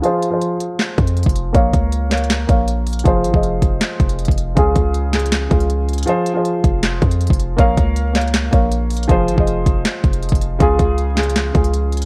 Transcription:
0.02 F3 F4 G#4 C5, closed hi-hat
0.23 closed hi-hat
0.30 F3 F4 G#4 C5
0.41 closed hi-hat
0.60 closed hi-hat
0.79 snare, clap, closed hi-hat
0.98 F2, kick, closed hi-hat
1.07 closed hi-hat
1.17 closed hi-hat
1.23 F1, kick, closed hi-hat
1.29 closed hi-hat
1.36 closed hi-hat
1.53 A#1 A#3 A#4 C#5 F5, kick, closed hi-hat
1.74 C#2, kick, closed hi-hat
1.92 closed hi-hat
2.10 A#3 A#4 C#5 F5, snare, clap, closed hi-hat
2.18 closed hi-hat
2.24 closed hi-hat
2.30 snare, clap, closed hi-hat
2.47 A#1 A#3 A#4 C#5 F5, kick, closed hi-hat
2.68 closed hi-hat
2.87 closed hi-hat, open hi-hat
2.93 closed hi-hat
2.99 closed hi-hat
3.04 F1 F3 F4 G#4 C5, kick, closed hi-hat
3.24 G#1, closed hi-hat
3.32 F1 F3 F4 G#4 D#5, kick
3.43 closed hi-hat
3.62 F1, kick, closed hi-hat
3.81 snare, clap, closed hi-hat
4.00 F1, kick, closed hi-hat
4.09 closed hi-hat
4.19 closed hi-hat
4.25 F1, kick, closed hi-hat
4.31 closed hi-hat
4.38 closed hi-hat
4.55 C#2 C#3 C#4 F4 G#4, kick, closed hi-hat
4.75 C#2, kick, closed hi-hat
4.94 closed hi-hat
5.11 C#3 C#4 F4 G#4, snare, clap, closed hi-hat
5.19 closed hi-hat
5.26 closed hi-hat
5.32 snare, clap, closed hi-hat
5.49 C#2 C#3 C#4 F4 G#4, kick, closed hi-hat
5.60 closed hi-hat
5.70 closed hi-hat
5.89 closed hi-hat
5.93 closed hi-hat
5.98 closed hi-hat
6.03 F3, closed hi-hat
6.07 F4 G#4 C5, closed hi-hat
6.26 closed hi-hat
6.34 F3 F4 G#4 C5
6.45 closed hi-hat
6.64 F1, kick, closed hi-hat
6.83 snare, clap, closed hi-hat
7.02 F2, kick, closed hi-hat
7.11 closed hi-hat
7.21 closed hi-hat
7.27 F1, kick, closed hi-hat
7.33 closed hi-hat
7.40 closed hi-hat
7.57 A#1 A#3 A#4 C#5 F5, kick, closed hi-hat
7.77 C#2, kick, closed hi-hat
7.96 closed hi-hat
8.13 A#3 A#4 C#5 F5, snare, clap, closed hi-hat
8.21 closed hi-hat
8.28 closed hi-hat
8.34 snare, clap, closed hi-hat
8.51 A#1 A#3 A#4 C#5 F5, kick, closed hi-hat
8.72 closed hi-hat
8.91 closed hi-hat, open hi-hat
8.97 closed hi-hat
9.03 closed hi-hat
9.08 F1 F3 F4 G#4 C5, kick, closed hi-hat
9.28 G#1, closed hi-hat
9.36 F1 F3 F4 G#4 D#5, kick
9.47 closed hi-hat
9.66 F1, kick, closed hi-hat
9.85 snare, clap, closed hi-hat
10.04 F1, kick, closed hi-hat
10.13 closed hi-hat
10.23 closed hi-hat
10.29 F1, kick, closed hi-hat
10.35 closed hi-hat
10.41 closed hi-hat
10.59 C#2 C#3 C#4 F4 G#4, kick, closed hi-hat
10.79 C#2, kick, closed hi-hat
10.98 closed hi-hat
11.15 C#3 C#4 F4 G#4, snare, clap, closed hi-hat
11.23 closed hi-hat
11.30 closed hi-hat
11.36 snare, clap, closed hi-hat
11.53 C#2 C#3 C#4 F4 G#4, kick, closed hi-hat
11.64 closed hi-hat
11.74 closed hi-hat
11.92 closed hi-hat
11.97 closed hi-hat
12.02 closed hi-hat

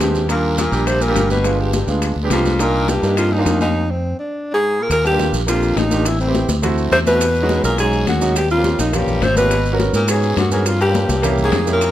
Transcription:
Already playing: G#3 C4 D4 G4
0.00 D#2 G2 G4, high bongo, low bongo, high conga, short guiro, maracas
0.15 high bongo, high conga, short guiro, maracas
0.28 A#2 G3 A#3 D4 F4 A#4, high bongo, high conga, long guiro, maracas
0.44 high conga
0.58 A#2 A#4, high bongo, high conga, short guiro, maracas
0.71 A#1 G3 A#3 D4 G4, high conga, short guiro, maracas
0.87 C3 C5, high bongo, high conga, long guiro, maracas
1.01 A#2 A#4, high conga, maracas
1.07 G3 A#3 D4 G4
1.15 G1, high bongo, low bongo, high conga, short guiro, maracas
1.30 B2 B4, high conga, short guiro, maracas
1.43 G#3 B3 D4 F4, high bongo, high conga, long guiro, maracas
1.59 G2 G4, high bongo, high conga
1.73 G2 G4, high bongo, high conga, short guiro, maracas
1.87 D2 G#3 B3 D4 F4, high bongo, high conga, short guiro, maracas
2.02 high bongo, high conga, long guiro, maracas
2.16 D2, high conga
2.23 G#3 B3 D4 G4
2.30 C2 F2 F4, high bongo, low bongo, high conga, short guiro, maracas
2.45 high bongo, high conga, short guiro, maracas
2.59 A#2 A#3 D4 D#4 F4 A#4, high bongo, high conga, long guiro, maracas
2.74 high conga
2.88 G2 G4, high bongo, high conga, short guiro, maracas
3.02 G2 A#3 D4 D#4 G4, high conga, short guiro, maracas
3.17 F2 F4, high bongo, high conga, long guiro, maracas
3.31 D#2 D#4, high conga
3.38 A#3 D4 D#4 F4
3.46 F2, high bongo, low bongo, high conga, short guiro, maracas
3.60 D#2 D#4, high conga, short guiro, maracas
3.91 C4
4.19 D4
4.53 G#2 G#4
4.81 A#2 A#4
4.90 D#2 A#2 A#4, high bongo, high conga, long guiro, maracas
5.04 G2 G4, high bongo, high conga, maracas
5.11 A#3 D4 F4 G4
5.19 high bongo, high conga, short guiro, maracas
5.33 A#1, high bongo, high conga, short guiro, maracas
5.47 F2 A#3 D4 F4 G4, high bongo, high conga, long guiro, maracas
5.62 high bongo, high conga, maracas
5.76 A1 D#2 D#4, high bongo, low bongo, high conga, short guiro, maracas
5.90 A#3 D4 F4 G4, high conga, short guiro, maracas
6.05 E2 E4, high bongo, long guiro, maracas
6.19 C2 C4, high bongo, high conga, maracas
6.26 B3 C4 E4 G4
6.35 high bongo, high conga, short guiro, maracas
6.48 D2, high bongo, high conga, short guiro, maracas
6.62 A3 C4 E4 F#4, high bongo, high conga, low conga, long guiro, maracas
6.78 high bongo, high conga, maracas
6.92 E2 C3 C5, high bongo, low bongo, high conga, short guiro, maracas
7.06 B2 A3 C4 E4 F#4 B4, high conga, short guiro, maracas
7.21 high bongo, long guiro, maracas
7.35 high bongo, high conga, maracas
7.42 G#3 C#4 D#4 F#4
7.49 high bongo, high conga, short guiro, maracas
7.64 B1 A#2 A#4, high bongo, high conga, short guiro, maracas
7.78 G#2 G#3 C#4 D#4 F#4 G#4, high bongo, high conga, long guiro, maracas
7.93 high bongo, high conga, maracas
8.07 D#2 F#2 F#4, high bongo, low bongo, high conga, short guiro, maracas
8.20 G#3 C#4 D#4 F#4, high conga, short guiro, maracas
8.36 G2 G4, high bongo, high conga, long guiro, maracas
8.50 F2 F4, high bongo, high conga, maracas
8.57 A#3 C#4 F4 G4
8.64 high bongo, high conga, short guiro, maracas
8.79 A#1 D#2 D#4, high bongo, high conga, short guiro, maracas
8.92 G2 A#3 C#4 F4 G4, high bongo, high conga, low conga, long guiro, maracas
9.07 A#1, high bongo, high conga, low conga, maracas
9.21 G#1 C3 C5, high bongo, low bongo, high conga, short guiro, maracas
9.36 B2 A#3 C#4 F4 G4 B4, high conga, short guiro, maracas
9.51 high bongo, high conga, long guiro, maracas
9.65 high bongo, high conga, maracas
9.72 B3 C#4 F#4 A#4
9.80 high bongo, high conga, short guiro, maracas
9.93 G#2 A#2 A#4, high bongo, high conga, short guiro, maracas
10.07 G#2 B3 C#4 F#4 G#4 C#5, high bongo, high conga, long guiro, maracas
10.23 high bongo, high conga, maracas
10.37 F#2 G2 F#4, high bongo, low bongo, high conga, short guiro, maracas
10.51 G#2 B3 C#4 F#4 G#4 A#4, high conga, short guiro, maracas
10.66 F2 F4, high bongo, high conga, long guiro, maracas
10.80 G2 G4, high bongo, high conga, maracas
10.87 A#3 C#4 F4 G4
10.95 high bongo, high conga, short guiro, maracas
11.09 C2, high bongo, high conga, short guiro, maracas
11.22 A#3 C#4 E4 G4, high bongo, high conga, low conga, long guiro, maracas
11.38 high bongo, high conga, low conga, maracas
11.43 G#2 G#4
11.52 F2, high bongo, low bongo, high conga, short guiro, maracas
11.66 A#3 C#4 E4 G4, high conga, short guiro, maracas
11.72 A#2 A#4
11.81 high bongo, long guiro, maracas

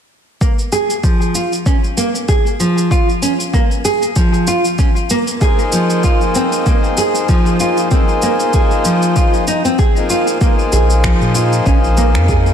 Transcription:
0.41 A#3, kick, shaker
0.59 shaker
0.72 G#4, shaker
0.90 shaker
1.04 F3, kick, shaker
1.22 shaker
1.35 F4, shaker
1.53 shaker
1.66 C#4, kick, shaker
1.84 shaker
1.97 A#3, shaker
2.15 shaker
2.28 G#4, kick, shaker
2.46 shaker
2.60 F3, shaker
2.78 shaker
2.91 F4, kick, shaker
3.09 shaker
3.22 C#4, shaker
3.40 shaker
3.54 A#3, kick, shaker
3.71 shaker
3.85 G#4, shaker
4.03 shaker
4.16 F3, kick, shaker
4.34 shaker
4.47 F4, shaker
4.65 shaker
4.79 C#4, kick, shaker
4.96 shaker
5.10 A#3, shaker
5.28 shaker
5.39 F3 A#3 D#4 G#4, kick, shaker
5.43 C5
5.59 shaker
5.72 F3, shaker
5.90 shaker
6.04 F4, kick, shaker
6.21 shaker
6.35 C4, shaker
6.53 shaker
6.66 A#3, kick, shaker
6.84 shaker
6.97 G#4, shaker
7.15 shaker
7.29 F3, kick, shaker
7.46 shaker
7.59 F3 A#3 D#4 F4 G#4 C5, shaker
7.77 shaker
7.89 F3 A#3 C4 D#4 G#4 C5, kick, shaker
8.09 shaker
8.22 A#3, shaker
8.40 shaker
8.53 G#4, kick, shaker
8.71 shaker
8.85 F3, shaker
9.02 shaker
9.16 F4, kick, shaker
9.34 shaker
9.48 D#4, shaker
9.65 C4, shaker
9.79 G#4, kick, shaker
9.95 F3 A#3 D#4 G#4 C5, shaker
10.10 F4, shaker
10.27 shaker
10.39 F3 A#3 D#4 G#4 C5, kick, shaker
10.59 shaker
10.72 A#1 G#4, shaker
10.90 shaker
11.04 F3, finger snap, kick, shaker
11.22 A#2, shaker
11.35 F4, shaker
11.53 shaker
11.66 A#1 C#4, kick, shaker
11.84 shaker
11.97 A#3, shaker
12.15 F2, finger snap, shaker
12.29 G#4, kick, shaker
12.46 shaker

